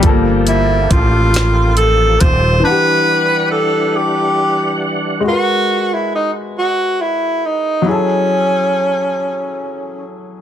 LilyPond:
<<
  \new Staff \with { instrumentName = "Tenor saxophone" } { \time 6/8 \key e \major \tempo 4. = 46 r8 e'8 f'4 a'8 bis'8 | b'4 a'8 g'4 r8 | fis'8. e'16 dis'8 fis'8 e'8 dis'8 | cis'2~ cis'8 r8 | }
  \new Staff \with { instrumentName = "Grand piano" } { \time 6/8 \key e \major <f g bes a'>2. | <e d' g' fis''>2. | <gis fis' ais' b'>2. | <fis e' gis' a'>2. | }
  \new Staff \with { instrumentName = "Tonewheel organ" } { \time 6/8 \key e \major <f bes g' a'>2. | <e g d' fis''>2. | r2. | r2. | }
  \new Staff \with { instrumentName = "Fretless electric bass" } { \clef bass \time 6/8 \key e \major g,,4 a,,4. dis,,8 | r2. | r2. | r2. | }
  \new DrumStaff \with { instrumentName = "Drums" } \drummode { \time 6/8 <hh bd>8 hh8 <hh bd>8 <hh sn>8 hh8 <hh bd>8 | r4. r4. | r4. r4. | r4. r4. | }
>>